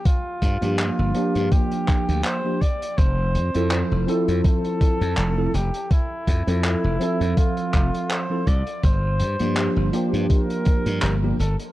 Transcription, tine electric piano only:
X:1
M:4/4
L:1/16
Q:"Swing 16ths" 1/4=82
K:F
V:1 name="Tine electric piano"
z3 [F,B,DG]3 [F,B,DG]6- [F,B,DG] [F,B,DG] z2 | z3 [F,CEA]3 [F,CEA]6- [F,CEA] [F,CEA] z2 | z3 [F,CEA]3 [F,CAe]6- [F,CAe] [F,CEA] z2 | z3 [F,B,DG]3 [F,B,DG]6- [F,B,DG] [F,B,DG] z2 |]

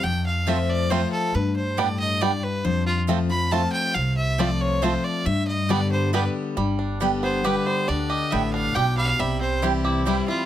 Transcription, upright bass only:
X:1
M:3/4
L:1/8
Q:1/4=138
K:Gmix
V:1 name="Upright bass" clef=bass
F,,6 | G,,6 | F,,6 | C,,6 |
G,,6 | G,,,6 | D,,2 A,,,2 B,,,2 | C,,6 |]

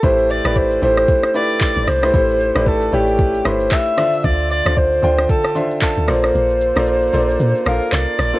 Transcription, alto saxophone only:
X:1
M:4/4
L:1/8
Q:"Swing 16ths" 1/4=114
K:Aphr
V:1 name="Alto saxophone"
c d c c2 d2 c- | c2 A G2 c e2 | d d c2 A z A c- | c4- c B d2 |]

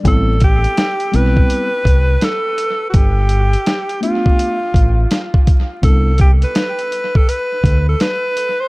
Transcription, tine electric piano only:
X:1
M:4/4
L:1/8
Q:"Swing 16ths" 1/4=83
K:Am
V:1 name="Tine electric piano"
[G,B,CE] z2 [G,B,CE] z4 | z3 [A,B,DF] z4 | [G,B,DE] z6 z |]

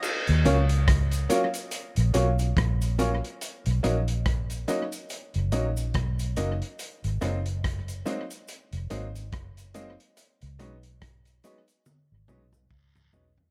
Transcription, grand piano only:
X:1
M:4/4
L:1/16
Q:"Swing 16ths" 1/4=71
K:Ebm
V:1 name="Grand piano"
z2 [G,B,DF] z3 [G,B,DF] z3 [G,B,DF] [DF] z2 [G,B,DF] z | z2 [^F,^A,D^D] z3 [F,A,_D^D] z3 [F,A,_D^D] [_D^D] z2 [F,A,_D^D] z | z2 [G,B,=CE] z3 [G,B,CE] z3 [G,B,CE] [CE] z2 [G,B,CE] z | z2 [G,A,CE] z3 [G,A,CE] z3 [G,A,CE] [CE] z2 [G,A,CE] z |]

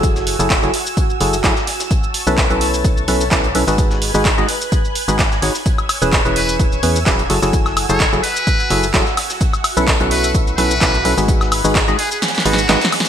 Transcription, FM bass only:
X:1
M:4/4
L:1/16
Q:"Swing 16ths" 1/4=128
K:F#dor
V:1 name="FM bass" clef=bass
F,,,3 F,,,2 F,,, z4 F,,,2 F,,, z3 | z3 B,,,2 B,,,4- B,,, B,,,2 B,,,2 B,,, G,,,- | G,,,3 G,,,2 G,,, z4 z G,,,3 G,,, z | z3 E,,,2 E,,,4- E,,, E,,2 E,,,2 F,,, F,,,- |
F,,,3 F,,,2 F,,, z4 F,,,2 F,,, z3 | z3 B,,,2 B,,,4- B,,, B,,,2 B,,,2 B,,, G,,,- | G,,,3 G,,,2 G,,, z4 G,,,2 G,,, z3 |]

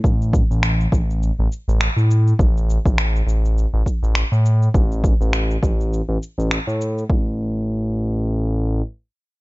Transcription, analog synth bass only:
X:1
M:4/4
L:1/16
Q:"Swing 16ths" 1/4=102
K:C
V:1 name="Analog synth bass" clef=bass
A,,,3 A,,,3 A,,,3 A,,, z A,,, z A,,3 | A,,,3 A,,,3 A,,,3 A,,, z A,,, z A,,3 | A,,,3 A,,,3 A,,,3 A,,, z A,,, z A,,3 | A,,,12 z4 |]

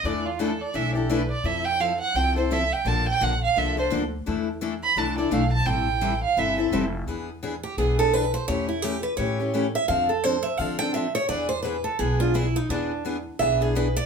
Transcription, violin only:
X:1
M:4/4
L:1/8
Q:"Swing" 1/4=171
K:Ephr
V:1 name="Violin"
d F A d e G B d | e g f ^f g c e g | a g ^f =f e c z2 | z3 b a d f a |
g3 f e2 z2 | z8 | z8 | z8 |
z8 | z8 |]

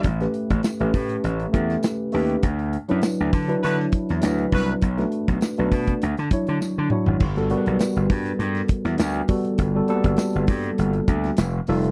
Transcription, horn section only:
X:1
M:4/4
L:1/16
Q:"Swing 16ths" 1/4=101
K:Glyd
V:1 name="Horn section"
z16 | z8 [B,EFB] z4 z [B,EFB]2 | z16 | z16 |
z16 |]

